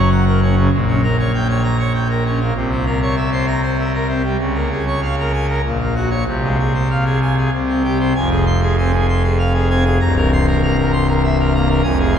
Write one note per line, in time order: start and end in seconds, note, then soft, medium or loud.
0.00 0.68 F#1 medium
0.00 0.68 F#2 medium
0.12 0.25 F#5 medium
0.27 0.40 A#4 medium
0.42 0.55 C#4 medium
0.57 0.70 C#3 medium
0.73 2.52 A#1 medium
0.73 2.52 A#2 loud
0.88 1.01 C#4 medium
1.04 1.17 A#4 medium
1.19 1.32 C#5 medium
1.34 1.47 G5 medium
1.49 1.62 C#5 medium
1.64 1.77 A#5 loud
1.79 1.92 C#5 medium
1.94 2.08 G5 medium
2.10 2.23 A#4 medium
2.26 2.39 C#4 medium
2.41 2.53 A#3 medium
2.55 4.35 C2 loud
2.55 4.35 C3 medium
2.71 2.84 C4 medium
2.86 3.00 A#4 medium
3.02 3.15 C#5 medium
3.17 3.30 E5 medium
3.32 3.46 C5 medium
3.48 3.61 A#5 loud
3.63 3.76 C5 medium
3.79 3.92 E5 medium
3.94 4.07 A#4 medium
4.08 4.22 C4 medium
4.24 4.37 G3 medium
4.39 5.59 C#2 loud
4.39 5.59 C#3 medium
4.55 4.69 A#3 medium
4.71 4.84 G#4 medium
4.87 5.00 C#5 medium
5.02 5.15 F5 medium
5.19 5.32 A#4 medium
5.33 5.47 G#5 medium
5.49 5.62 A#4 medium
5.64 6.25 A#1 medium
5.64 6.25 A#2 medium
5.80 5.94 A#3 medium
5.95 6.09 F#4 medium
6.10 6.24 C#5 medium
6.27 7.49 C2 medium
6.27 7.49 C3 medium
6.43 6.57 G#3 medium
6.60 6.73 G#4 medium
6.74 6.88 C5 medium
6.91 7.04 F5 medium
7.05 7.19 G#4 medium
7.22 7.35 G#5 medium
7.37 7.50 G#4 medium
7.53 8.13 C2 medium
7.53 8.13 C3 medium
7.68 7.82 C4 medium
7.84 7.98 G4 medium
8.00 8.13 C5 medium
8.16 9.98 F1 medium
8.16 9.98 F2 medium
8.16 8.29 G#5 medium
8.31 8.45 G#4 medium
8.46 8.60 C6 medium
8.63 8.76 G#4 medium
8.78 8.92 C4 medium
8.78 8.92 G#5 medium
8.92 9.07 G#4 medium
9.09 9.23 C6 medium
9.24 9.38 G#4 medium
9.39 9.53 F5 medium
9.54 9.69 G#4 medium
9.70 9.84 C4 medium
9.70 9.84 G#5 medium
9.85 9.99 G#4 medium
10.00 11.81 C1 medium
10.00 11.81 C2 medium
10.00 10.15 A#5 medium
10.17 10.30 A#4 medium
10.32 10.46 C6 medium
10.48 10.61 A#4 medium
10.63 10.77 A#3 medium
10.63 10.76 A#5 medium
10.78 10.92 A#4 medium
10.93 11.07 C6 medium
11.08 11.22 A#4 medium
11.24 11.38 E5 medium
11.39 11.53 A#4 medium
11.54 11.68 A#3 medium
11.54 11.68 A#5 medium
11.69 11.83 A#4 medium
11.83 12.19 F1 medium
11.83 12.19 F2 medium
11.83 11.98 G#5 medium
12.00 12.14 G#4 medium
12.15 12.19 C6 medium